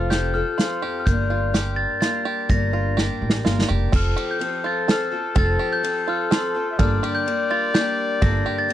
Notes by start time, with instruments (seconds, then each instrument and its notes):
Already playing: upright bass F1, steel-string acoustic guitar C4 F4 A4, five-string banjo F4, glockenspiel F6
0.10 steel-string acoustic guitar F3 C4 F4 A4, five-string banjo G4, glockenspiel G6, snare, closed hi-hat
0.34 steel-string acoustic guitar C4 F4 A4, glockenspiel F6
0.58 steel-string acoustic guitar F3 C4 F4 A4, five-string banjo F4, glockenspiel C6, snare, closed hi-hat
0.82 steel-string acoustic guitar F2, five-string banjo G4
1.00 glockenspiel F6
1.06 upright bass G1, steel-string acoustic guitar G2 D3 G3 A#3 D4 A#4, glockenspiel G6, kick, closed hi-hat
1.30 five-string banjo F4
1.53 steel-string acoustic guitar G3 A#3 D4 A#4, five-string banjo G4, snare, closed hi-hat
1.76 glockenspiel A6
2.01 steel-string acoustic guitar G3 A#3 D4 A#4, five-string banjo F4, glockenspiel A6, snare, closed hi-hat
2.25 five-string banjo G4
2.49 upright bass G1, steel-string acoustic guitar G2 D3 G3 A#3 D4 A#4, glockenspiel A#6, kick, closed hi-hat
2.73 five-string banjo F4
2.97 steel-string acoustic guitar G3 A#3 D4 A#4, five-string banjo G4, snare
3.22 upright bass A1
3.30 snare
3.45 upright bass G1, steel-string acoustic guitar G3 A#3 D4 A#4, five-string banjo F4, snare
3.61 snare
3.69 upright bass F1, five-string banjo G4
3.92 upright bass F1, steel-string acoustic guitar F3 C4 F4 A4, trumpet A4, five-string banjo A4, glockenspiel F6, kick, crash
4.17 five-string banjo G4, ride
4.31 glockenspiel G6
4.39 steel-string acoustic guitar F3 C4 F4 A4, ride
4.64 five-string banjo F4, glockenspiel A6
4.88 steel-string acoustic guitar F3 C4 F4 A4, five-string banjo A4, glockenspiel F6, snare, ride
5.12 steel-string acoustic guitar C4 F4 A4
5.35 upright bass F1, steel-string acoustic guitar F3 C4 F4 A4, five-string banjo A4, glockenspiel A6, kick, ride
5.59 five-string banjo G4
5.73 glockenspiel G6
5.83 steel-string acoustic guitar F3 C4 F4 A4, ride
6.08 five-string banjo F4, glockenspiel F6
6.30 steel-string acoustic guitar F3 C4 F4 A4, five-string banjo A4, glockenspiel C6, snare, ride
6.54 steel-string acoustic guitar C4 F4 A4
6.71 trumpet E5
6.78 upright bass G1, steel-string acoustic guitar G2 D3 G3 A#3 D4 A#4, five-string banjo A4, trumpet D5, glockenspiel F6, kick, ride
7.03 five-string banjo G4, ride
7.15 glockenspiel G6
7.26 steel-string acoustic guitar G3 A#3 D4 A#4, ride
7.51 five-string banjo F4, glockenspiel A6
7.74 steel-string acoustic guitar G3 A#3 D4 A#4, five-string banjo G4, glockenspiel G6, snare, ride
8.22 upright bass G1, steel-string acoustic guitar G2 D3 G3 A#3 D4 A#4, five-string banjo A4, glockenspiel A#6, kick, ride
8.46 five-string banjo G4
8.58 glockenspiel A6
8.68 steel-string acoustic guitar G3 A#3 D4